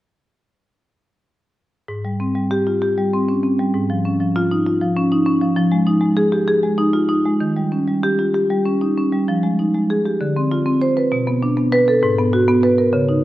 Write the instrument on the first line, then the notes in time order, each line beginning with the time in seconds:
marimba
1.88 G#2
2.05 G3
2.20 C4
2.35 G3
2.51 G4
2.67 F4
2.82 G4
2.98 G3
3.14 C4
3.29 C#4
3.43 C4
3.59 G3
3.74 G#2
3.90 F3
4.05 C#4
4.20 F3
4.36 F4
4.51 D#4
4.66 F4
4.81 F3
4.97 C#4
5.12 D#4
5.26 C#4
5.42 F3
5.56 F3
5.72 G#3
5.87 D#4
6.01 G#3
6.17 G#4
6.32 G4
6.48 G#4
6.63 G#3
6.78 D#4
6.93 F4
7.09 D#4
7.25 G#3
7.40 D#3
7.57 G3
7.72 C#4
7.88 G3
8.03 G4
8.19 F4
8.34 G4
8.50 G3
8.66 C#4
8.81 D#4
8.98 C#4
9.12 G3
9.28 F3
9.43 G#3
9.59 D#4
9.75 G#3
9.90 G#4
10.06 G4
10.21 D3
10.36 C4
10.52 F4
10.66 C4
10.82 C5
10.97 B4
11.12 B2
11.27 B3
11.43 D4
11.57 B3
11.72 B4
11.88 A4
12.03 G#2
12.18 B3
12.33 F#4
12.48 B3
12.63 B4
12.78 A#4
12.93 C#3
13.09 D#4